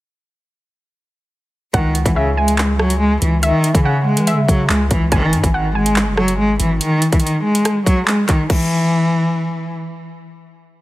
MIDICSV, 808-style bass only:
0, 0, Header, 1, 2, 480
1, 0, Start_track
1, 0, Key_signature, 4, "minor"
1, 0, Tempo, 422535
1, 1974, Time_signature, 4, 2, 24, 8
1, 12287, End_track
2, 0, Start_track
2, 0, Title_t, "808-style bass"
2, 0, Program_c, 0, 38
2, 1975, Note_on_c, 0, 37, 116
2, 2321, Note_off_c, 0, 37, 0
2, 2335, Note_on_c, 0, 37, 99
2, 3610, Note_off_c, 0, 37, 0
2, 3655, Note_on_c, 0, 37, 104
2, 4001, Note_off_c, 0, 37, 0
2, 4255, Note_on_c, 0, 49, 107
2, 4735, Note_on_c, 0, 52, 101
2, 4752, Note_off_c, 0, 49, 0
2, 4915, Note_on_c, 0, 49, 104
2, 4932, Note_off_c, 0, 52, 0
2, 5086, Note_off_c, 0, 49, 0
2, 5095, Note_on_c, 0, 49, 106
2, 5325, Note_off_c, 0, 49, 0
2, 5334, Note_on_c, 0, 37, 110
2, 5565, Note_off_c, 0, 37, 0
2, 5575, Note_on_c, 0, 37, 104
2, 5806, Note_off_c, 0, 37, 0
2, 5815, Note_on_c, 0, 32, 109
2, 6055, Note_on_c, 0, 44, 97
2, 6072, Note_off_c, 0, 32, 0
2, 6169, Note_off_c, 0, 44, 0
2, 6174, Note_on_c, 0, 32, 110
2, 6895, Note_on_c, 0, 30, 102
2, 6912, Note_off_c, 0, 32, 0
2, 7195, Note_on_c, 0, 32, 99
2, 7212, Note_off_c, 0, 30, 0
2, 7480, Note_off_c, 0, 32, 0
2, 7495, Note_on_c, 0, 32, 104
2, 7725, Note_off_c, 0, 32, 0
2, 12287, End_track
0, 0, End_of_file